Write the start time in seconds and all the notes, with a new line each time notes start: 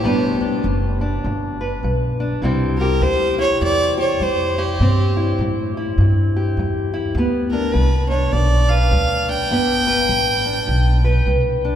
Already playing: G4
0.04 G1 G2 G3 B3 D4
0.41 D4, muted upright bass stroke
0.63 F#1 G3
1.01 D4
1.24 G1 D3
1.61 B4
1.83 B1 G3
2.20 D4
2.42 C2 C3 G3 C4 E4 G4
2.78 G4 A#4
3.01 D2 G3 C5
3.38 E4 C#5
3.61 E2 G2 D5
3.98 G4 C#5
4.20 F2 G3 C5
4.58 E4 G4
4.80 G2 C3 C4
5.17 E4
5.39 A2 G3
5.77 E4
5.98 G2
6.36 G4
6.57 E2 G3
6.94 E4
7.15 D2 G2 B3
7.51 D4 A#4
7.72 C2 G3 B4
8.09 D4 C#5
8.33 B1 D3 D5
8.69 B4 F5
8.91 D2 G3
9.29 D4 G5
9.51 G1 G2 B3
9.87 B4
10.09 A1 G3
10.46 D4
10.67 B1 D3
11.04 B4
11.27 C2 G3
11.65 D4